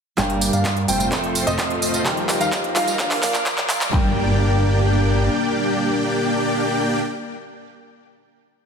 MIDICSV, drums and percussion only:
0, 0, Header, 1, 2, 480
1, 0, Start_track
1, 0, Key_signature, -2, "minor"
1, 0, Tempo, 468750
1, 184, Time_signature, 4, 2, 24, 8
1, 8864, End_track
2, 0, Start_track
2, 0, Title_t, "Drums"
2, 184, Note_on_c, 9, 36, 116
2, 185, Note_on_c, 9, 39, 46
2, 185, Note_on_c, 9, 42, 51
2, 188, Note_on_c, 9, 54, 31
2, 287, Note_off_c, 9, 36, 0
2, 287, Note_off_c, 9, 39, 0
2, 287, Note_off_c, 9, 42, 0
2, 291, Note_off_c, 9, 54, 0
2, 305, Note_on_c, 9, 42, 27
2, 407, Note_off_c, 9, 42, 0
2, 424, Note_on_c, 9, 46, 102
2, 428, Note_on_c, 9, 54, 77
2, 527, Note_off_c, 9, 46, 0
2, 530, Note_off_c, 9, 54, 0
2, 544, Note_on_c, 9, 42, 52
2, 548, Note_on_c, 9, 54, 43
2, 647, Note_off_c, 9, 42, 0
2, 650, Note_off_c, 9, 54, 0
2, 664, Note_on_c, 9, 36, 112
2, 665, Note_on_c, 9, 39, 50
2, 665, Note_on_c, 9, 42, 51
2, 668, Note_on_c, 9, 54, 31
2, 766, Note_off_c, 9, 36, 0
2, 767, Note_off_c, 9, 39, 0
2, 767, Note_off_c, 9, 42, 0
2, 770, Note_off_c, 9, 54, 0
2, 784, Note_on_c, 9, 42, 26
2, 887, Note_off_c, 9, 42, 0
2, 904, Note_on_c, 9, 46, 102
2, 908, Note_on_c, 9, 54, 77
2, 1007, Note_off_c, 9, 46, 0
2, 1010, Note_off_c, 9, 54, 0
2, 1025, Note_on_c, 9, 42, 53
2, 1028, Note_on_c, 9, 54, 44
2, 1127, Note_off_c, 9, 42, 0
2, 1131, Note_off_c, 9, 54, 0
2, 1144, Note_on_c, 9, 36, 113
2, 1145, Note_on_c, 9, 39, 58
2, 1145, Note_on_c, 9, 42, 53
2, 1149, Note_on_c, 9, 54, 33
2, 1246, Note_off_c, 9, 36, 0
2, 1247, Note_off_c, 9, 39, 0
2, 1247, Note_off_c, 9, 42, 0
2, 1251, Note_off_c, 9, 54, 0
2, 1265, Note_on_c, 9, 42, 27
2, 1368, Note_off_c, 9, 42, 0
2, 1385, Note_on_c, 9, 46, 100
2, 1389, Note_on_c, 9, 54, 74
2, 1488, Note_off_c, 9, 46, 0
2, 1491, Note_off_c, 9, 54, 0
2, 1505, Note_on_c, 9, 42, 54
2, 1509, Note_on_c, 9, 54, 43
2, 1608, Note_off_c, 9, 42, 0
2, 1611, Note_off_c, 9, 54, 0
2, 1624, Note_on_c, 9, 36, 117
2, 1625, Note_on_c, 9, 39, 62
2, 1625, Note_on_c, 9, 42, 52
2, 1628, Note_on_c, 9, 54, 32
2, 1726, Note_off_c, 9, 36, 0
2, 1727, Note_off_c, 9, 39, 0
2, 1727, Note_off_c, 9, 42, 0
2, 1731, Note_off_c, 9, 54, 0
2, 1745, Note_on_c, 9, 42, 27
2, 1847, Note_off_c, 9, 42, 0
2, 1865, Note_on_c, 9, 46, 108
2, 1868, Note_on_c, 9, 54, 79
2, 1967, Note_off_c, 9, 46, 0
2, 1971, Note_off_c, 9, 54, 0
2, 1985, Note_on_c, 9, 42, 54
2, 1989, Note_on_c, 9, 54, 44
2, 2087, Note_off_c, 9, 42, 0
2, 2091, Note_off_c, 9, 54, 0
2, 2104, Note_on_c, 9, 36, 127
2, 2105, Note_on_c, 9, 39, 72
2, 2105, Note_on_c, 9, 42, 52
2, 2108, Note_on_c, 9, 54, 32
2, 2207, Note_off_c, 9, 36, 0
2, 2207, Note_off_c, 9, 39, 0
2, 2207, Note_off_c, 9, 42, 0
2, 2211, Note_off_c, 9, 54, 0
2, 2225, Note_on_c, 9, 42, 27
2, 2327, Note_off_c, 9, 42, 0
2, 2345, Note_on_c, 9, 39, 79
2, 2345, Note_on_c, 9, 46, 109
2, 2348, Note_on_c, 9, 54, 73
2, 2447, Note_off_c, 9, 39, 0
2, 2447, Note_off_c, 9, 46, 0
2, 2451, Note_off_c, 9, 54, 0
2, 2464, Note_on_c, 9, 42, 53
2, 2468, Note_on_c, 9, 54, 42
2, 2567, Note_off_c, 9, 42, 0
2, 2570, Note_off_c, 9, 54, 0
2, 2584, Note_on_c, 9, 36, 116
2, 2585, Note_on_c, 9, 39, 80
2, 2585, Note_on_c, 9, 42, 52
2, 2588, Note_on_c, 9, 54, 32
2, 2687, Note_off_c, 9, 36, 0
2, 2687, Note_off_c, 9, 39, 0
2, 2687, Note_off_c, 9, 42, 0
2, 2691, Note_off_c, 9, 54, 0
2, 2704, Note_on_c, 9, 42, 25
2, 2807, Note_off_c, 9, 42, 0
2, 2824, Note_on_c, 9, 39, 91
2, 2824, Note_on_c, 9, 46, 111
2, 2828, Note_on_c, 9, 54, 77
2, 2927, Note_off_c, 9, 39, 0
2, 2927, Note_off_c, 9, 46, 0
2, 2930, Note_off_c, 9, 54, 0
2, 2945, Note_on_c, 9, 42, 56
2, 2948, Note_on_c, 9, 54, 45
2, 3047, Note_off_c, 9, 42, 0
2, 3051, Note_off_c, 9, 54, 0
2, 3064, Note_on_c, 9, 36, 123
2, 3065, Note_on_c, 9, 39, 94
2, 3065, Note_on_c, 9, 42, 55
2, 3068, Note_on_c, 9, 54, 33
2, 3167, Note_off_c, 9, 36, 0
2, 3167, Note_off_c, 9, 39, 0
2, 3167, Note_off_c, 9, 42, 0
2, 3170, Note_off_c, 9, 54, 0
2, 3185, Note_on_c, 9, 39, 79
2, 3185, Note_on_c, 9, 46, 62
2, 3287, Note_off_c, 9, 39, 0
2, 3287, Note_off_c, 9, 46, 0
2, 3304, Note_on_c, 9, 39, 93
2, 3304, Note_on_c, 9, 46, 107
2, 3308, Note_on_c, 9, 54, 74
2, 3407, Note_off_c, 9, 39, 0
2, 3407, Note_off_c, 9, 46, 0
2, 3410, Note_off_c, 9, 54, 0
2, 3424, Note_on_c, 9, 39, 85
2, 3424, Note_on_c, 9, 42, 54
2, 3428, Note_on_c, 9, 54, 43
2, 3527, Note_off_c, 9, 39, 0
2, 3527, Note_off_c, 9, 42, 0
2, 3530, Note_off_c, 9, 54, 0
2, 3544, Note_on_c, 9, 36, 126
2, 3545, Note_on_c, 9, 39, 100
2, 3545, Note_on_c, 9, 42, 53
2, 3548, Note_on_c, 9, 54, 32
2, 3647, Note_off_c, 9, 36, 0
2, 3647, Note_off_c, 9, 39, 0
2, 3647, Note_off_c, 9, 42, 0
2, 3651, Note_off_c, 9, 54, 0
2, 3665, Note_on_c, 9, 39, 93
2, 3665, Note_on_c, 9, 42, 27
2, 3767, Note_off_c, 9, 39, 0
2, 3767, Note_off_c, 9, 42, 0
2, 3784, Note_on_c, 9, 39, 109
2, 3784, Note_on_c, 9, 46, 114
2, 3788, Note_on_c, 9, 54, 77
2, 3887, Note_off_c, 9, 39, 0
2, 3887, Note_off_c, 9, 46, 0
2, 3890, Note_off_c, 9, 54, 0
2, 3905, Note_on_c, 9, 39, 99
2, 3905, Note_on_c, 9, 42, 55
2, 3908, Note_on_c, 9, 54, 44
2, 4007, Note_off_c, 9, 39, 0
2, 4007, Note_off_c, 9, 42, 0
2, 4011, Note_off_c, 9, 54, 0
2, 4025, Note_on_c, 9, 36, 108
2, 4025, Note_on_c, 9, 39, 91
2, 4127, Note_off_c, 9, 36, 0
2, 4127, Note_off_c, 9, 39, 0
2, 8864, End_track
0, 0, End_of_file